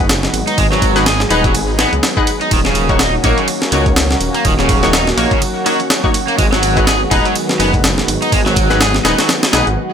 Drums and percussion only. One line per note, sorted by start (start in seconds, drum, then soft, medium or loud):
0.09 snare loud
0.09 closed hi-hat soft
0.09 ride medium
0.23 snare medium
0.34 closed hi-hat medium
0.34 ride medium
0.47 closed hi-hat soft
0.47 ride soft
0.58 kick loud
0.58 closed hi-hat soft
0.58 ride medium
0.72 snare soft
0.82 kick medium
0.82 closed hi-hat medium
0.82 ride medium
0.96 snare soft
0.96 closed hi-hat soft
1.06 snare loud
1.06 closed hi-hat soft
1.06 ride medium
1.20 snare medium
1.31 closed hi-hat medium
1.31 ride medium
1.44 kick loud
1.44 closed hi-hat soft
1.55 closed hi-hat soft
1.55 ride medium
1.79 snare loud
1.79 closed hi-hat medium
1.79 ride medium
1.93 closed hi-hat soft
2.03 snare loud
2.03 closed hi-hat soft
2.03 ride medium
2.17 kick loud
2.27 closed hi-hat medium
2.27 ride medium
2.41 closed hi-hat soft
2.51 kick loud
2.51 closed hi-hat soft
2.51 ride medium
2.65 snare medium
2.75 closed hi-hat medium
2.75 ride medium
2.89 kick medium
2.89 closed hi-hat soft
2.99 snare loud
2.99 closed hi-hat soft
2.99 ride medium
3.24 kick medium
3.24 closed hi-hat medium
3.24 ride medium
3.38 closed hi-hat soft
3.48 closed hi-hat soft
3.48 ride medium
3.62 snare medium
3.72 closed hi-hat medium
3.72 ride medium
3.86 kick medium
3.86 closed hi-hat soft
3.96 snare loud
3.96 closed hi-hat soft
3.96 ride medium
4.11 snare medium
4.21 closed hi-hat medium
4.21 ride medium
4.34 closed hi-hat soft
4.34 ride soft
4.45 kick loud
4.45 closed hi-hat soft
4.45 ride medium
4.59 snare soft
4.69 kick medium
4.69 closed hi-hat medium
4.69 ride medium
4.83 snare soft
4.83 closed hi-hat soft
4.93 snare loud
4.93 closed hi-hat soft
4.93 ride medium
5.07 snare medium
5.18 closed hi-hat medium
5.18 ride medium
5.31 kick loud
5.31 closed hi-hat soft
5.42 closed hi-hat soft
5.42 ride medium
5.66 closed hi-hat medium
5.66 ride medium
5.80 closed hi-hat soft
5.90 snare loud
5.90 closed hi-hat soft
5.90 ride medium
6.04 kick loud
6.14 closed hi-hat medium
6.14 ride medium
6.28 closed hi-hat soft
6.39 kick loud
6.39 closed hi-hat soft
6.39 ride medium
6.53 snare medium
6.63 closed hi-hat medium
6.63 ride medium
6.77 kick medium
6.77 closed hi-hat soft
6.87 snare loud
6.87 closed hi-hat soft
6.87 ride medium
7.11 kick loud
7.11 closed hi-hat medium
7.11 ride medium
7.25 closed hi-hat soft
7.36 closed hi-hat soft
7.36 ride medium
7.49 snare medium
7.60 closed hi-hat medium
7.60 ride medium
7.73 kick loud
7.73 closed hi-hat soft
7.84 snare loud
7.84 closed hi-hat soft
7.84 ride medium
7.98 snare medium
8.08 closed hi-hat medium
8.08 ride medium
8.22 closed hi-hat soft
8.22 ride soft
8.32 kick loud
8.32 closed hi-hat soft
8.32 ride medium
8.46 snare soft
8.56 kick medium
8.56 closed hi-hat medium
8.56 ride medium
8.70 snare soft
8.70 closed hi-hat soft
8.81 snare loud
8.81 closed hi-hat soft
8.81 ride medium
8.95 snare medium
9.05 snare loud
9.05 closed hi-hat medium
9.05 ride medium
9.19 snare loud
9.19 closed hi-hat soft
9.19 ride medium
9.29 snare loud
9.29 closed hi-hat soft
9.29 ride medium
9.43 snare loud
9.43 ride medium
9.53 snare loud
9.53 closed hi-hat medium
9.53 ride medium
9.67 closed hi-hat soft